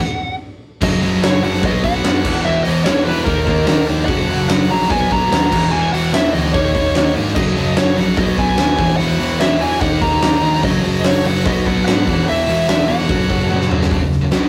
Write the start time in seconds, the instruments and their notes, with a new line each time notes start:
Already playing: lead electric guitar F#5
0.81 picked electric bass F#1, distorted electric guitar F#2 C#3 F#3, lead electric guitar D#5, kick, crash
1.01 picked electric bass F#1, distorted electric guitar F#2 C#3 F#3, open hi-hat
1.21 picked electric bass F#1, distorted electric guitar F#2 C#3 F#3, lead electric guitar C#5, snare, open hi-hat
1.43 picked electric bass F#1, distorted electric guitar F#2 C#3 F#3, lead electric guitar F#5, open hi-hat
1.54 snare
1.62 picked electric bass B1, distorted electric guitar B2 F#3 B3, lead electric guitar D#5, kick, open hi-hat
1.84 picked electric bass B1, distorted electric guitar B2 F#3 B3, lead electric guitar F#5, kick, open hi-hat
2.04 picked electric bass F#2, distorted electric guitar B2 F#3 B3, snare, open hi-hat
2.23 picked electric bass E1, distorted electric guitar E2 B2 E3, kick, crash
2.44 picked electric bass E1, distorted electric guitar E2 B2 E3, lead electric guitar E5
2.64 picked electric bass E1, distorted electric guitar E2 B2, lead electric guitar D#5, open hi-hat
2.68 distorted electric guitar E3
2.85 picked electric bass E1, distorted electric guitar E2 B2 E3, lead electric guitar C#5, snare, open hi-hat
3.03 picked electric bass E1, distorted electric guitar E2, lead electric guitar B4, open hi-hat
3.08 distorted electric guitar B2 E3
3.25 picked electric bass D#2, distorted electric guitar D#3 A#3 D#4, lead electric guitar A#4, kick, open hi-hat
3.47 picked electric bass D#2, distorted electric guitar D#3 A#3 D#4, kick, open hi-hat
3.66 picked electric bass D#2, distorted electric guitar D#3 A#3 D#4, snare, open hi-hat
3.87 picked electric bass D#2, distorted electric guitar D#3 A#3 D#4, open hi-hat
4.05 picked electric bass F#1, distorted electric guitar F#2 C#3 F#3, lead electric guitar F#5, kick, open hi-hat
4.29 picked electric bass F#1, distorted electric guitar F#2 C#3 F#3, open hi-hat
4.49 picked electric bass F#1, distorted electric guitar F#2 C#3 F#3, lead electric guitar F#5, snare, open hi-hat
4.70 picked electric bass A#1, distorted electric guitar F#2 C#3 F#3, lead electric guitar A#5, open hi-hat
4.82 snare
4.90 picked electric bass B1, distorted electric guitar B2 F#3 B3, lead electric guitar G#5, kick, open hi-hat
5.11 picked electric bass B1, distorted electric guitar B2 F#3 B3, lead electric guitar A#5, kick, open hi-hat
5.31 picked electric bass D#2, distorted electric guitar B2 F#3 B3, snare, open hi-hat
5.51 picked electric bass E1, distorted electric guitar E2 B2 E3, kick, crash
5.71 picked electric bass E1, distorted electric guitar E2 B2 E3, lead electric guitar G#5
5.93 picked electric bass E1, distorted electric guitar E2 B2 E3, lead electric guitar F#5, open hi-hat
6.12 picked electric bass E1, distorted electric guitar E2 B2 E3, lead electric guitar E5, snare, open hi-hat
6.33 picked electric bass D2, distorted electric guitar E2 B2 E3, lead electric guitar D#5, open hi-hat
6.46 snare
6.53 picked electric bass D#2, distorted electric guitar D#3 A#3 D#4, lead electric guitar C#5, kick, open hi-hat
6.74 picked electric bass D#2, distorted electric guitar D#3 A#3 D#4, kick, open hi-hat
6.94 picked electric bass D#2, distorted electric guitar D#3 A#3 D#4, snare, open hi-hat
7.15 picked electric bass G#2, distorted electric guitar D#3 A#3 D#4, open hi-hat
7.27 snare
7.35 picked electric bass F#1, distorted electric guitar F#2 C#3 F#3, lead electric guitar D#5, kick, crash
7.56 picked electric bass F#1, distorted electric guitar F#2 C#3 F#3, open hi-hat
7.76 picked electric bass F#1, distorted electric guitar F#2 C#3 F#3, lead electric guitar C#5, snare, open hi-hat
7.96 picked electric bass A#1, distorted electric guitar F#2 C#3 F#3, lead electric guitar F#5, open hi-hat
8.16 picked electric bass B1, distorted electric guitar B2 F#3 B3, lead electric guitar D#5, kick, open hi-hat
8.36 picked electric bass B1, distorted electric guitar B2 F#3 B3, lead electric guitar G#5, kick, open hi-hat
8.56 picked electric bass D#2, distorted electric guitar B2 F#3 B3, snare, open hi-hat
8.77 picked electric bass E1, distorted electric guitar E2 B2 E3, kick, open hi-hat
8.89 snare
8.97 picked electric bass E1, distorted electric guitar E2 B2 E3, lead electric guitar F#5, open hi-hat
9.19 picked electric bass E1, distorted electric guitar E2 B2 E3, open hi-hat
9.40 picked electric bass E1, distorted electric guitar E2 B2 E3, lead electric guitar E5, snare, open hi-hat
9.60 picked electric bass E1, distorted electric guitar E2 B2 E3, lead electric guitar G#5, open hi-hat
9.81 picked electric bass D#2, distorted electric guitar D#3 A#3 D#4, lead electric guitar F#5, kick, open hi-hat
10.01 picked electric bass D#2, distorted electric guitar D#3 A#3 D#4, lead electric guitar A#5, kick, open hi-hat
10.22 picked electric bass D#2, distorted electric guitar D#3 A#3 D#4, snare, open hi-hat
10.42 picked electric bass D#2, distorted electric guitar D#3 A#3 D#4, open hi-hat
10.55 snare
10.63 picked electric bass F#1, distorted electric guitar F#2 C#3 F#3, lead electric guitar D#5, kick, open hi-hat
10.83 picked electric bass F#1, distorted electric guitar F#2 C#3 F#3, open hi-hat
11.04 picked electric bass F#1, distorted electric guitar F#2 C#3 F#3, lead electric guitar C#5, snare, open hi-hat
11.25 picked electric bass F#1, distorted electric guitar F#2 C#3 F#3, lead electric guitar F#5, open hi-hat
11.45 picked electric bass B1, distorted electric guitar B2 F#3 B3, lead electric guitar D#5, kick, open hi-hat
11.66 picked electric bass B1, distorted electric guitar B2 F#3 B3, lead electric guitar F#5, kick, open hi-hat
11.85 picked electric bass G#2, distorted electric guitar B2 F#3 B3, lead electric guitar F#5, snare, open hi-hat
12.06 picked electric bass E1, distorted electric guitar E2 B2 E3, kick, open hi-hat
12.19 snare
12.26 picked electric bass E1, distorted electric guitar E2 B2 E3, lead electric guitar E5, open hi-hat
12.47 picked electric bass E1, distorted electric guitar E2 B2 E3, open hi-hat
12.68 picked electric bass E1, distorted electric guitar E2 B2 E3, lead electric guitar E5, snare, open hi-hat
12.88 picked electric bass E1, distorted electric guitar E2 B2 E3, lead electric guitar F#5, open hi-hat
13.00 snare
13.07 picked electric bass F#1, distorted electric guitar F#2 C#3 F#3, kick, open hi-hat
13.29 picked electric bass F#1, distorted electric guitar F#2 C#3 F#3, kick, open hi-hat
13.49 picked electric bass F#1, distorted electric guitar F#2 C#3 F#3, high tom
13.61 snare
13.69 picked electric bass F#1, distorted electric guitar F#2 C#3 F#3, mid tom
13.82 snare
13.90 picked electric bass F#1, distorted electric guitar F#2 C#3, kick, open hi-hat
14.01 picked electric bass F#1, distorted electric guitar F#2 C#3
14.12 snare
14.21 picked electric bass F#1, distorted electric guitar F#2 C#3
14.31 picked electric bass B1, distorted electric guitar B2 F#3 B3, snare, open hi-hat